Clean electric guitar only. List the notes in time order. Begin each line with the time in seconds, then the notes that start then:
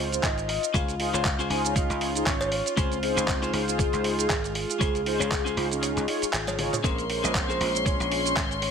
0.48 muted clean electric guitar stroke
0.74 C#4 F4 G#4 C5
1.13 C#4 F4 G#4 C5
1.39 C#4 F4 G#4 C5
1.50 G#5
1.75 F5, muted clean electric guitar stroke
1.89 muted clean electric guitar stroke
2.26 C#5
2.51 muted clean electric guitar stroke
2.76 C#4 F4 G#4 C5
3.16 C#4 F4 G#4 C5
3.42 C#4 F4 G#4 C5
3.78 muted clean electric guitar stroke
3.92 muted clean electric guitar stroke
4.55 muted clean electric guitar stroke
4.80 C#4 F4 G#4 C5
5.19 C#4 F4 G#4 C5
5.45 C#4 F4 G#4 C5
5.82 muted clean electric guitar stroke
5.96 muted clean electric guitar stroke
6.58 muted clean electric guitar stroke
6.83 C#4 G#4 A#4 C5
7.23 C#4 G#4 A#4 D#5
7.48 C#4 G#4 A#4 C5
7.85 muted clean electric guitar stroke
8.00 muted clean electric guitar stroke
8.62 muted clean electric guitar stroke